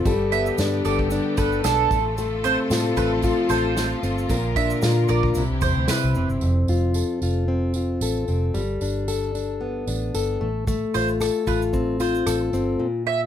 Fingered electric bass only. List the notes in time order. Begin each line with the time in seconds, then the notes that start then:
0.05 G1
0.58 G2
0.85 G1
1.38 G1
1.64 B1
1.91 A1
2.70 A2
2.97 A1
3.50 A1
4.03 G1
4.29 A#1
4.82 A#2
5.09 A#1
5.35 C2
5.50 C2
5.62 E2
5.77 D2
6.04 C2
6.15 F1
6.30 G1
6.42 F1
6.68 F1
7.21 F1
8.01 A1
8.28 F1
8.54 G1
8.81 G1
9.87 A1
10.14 G1
10.41 A1
10.95 A1
11.47 A1
12.27 A1
12.53 G1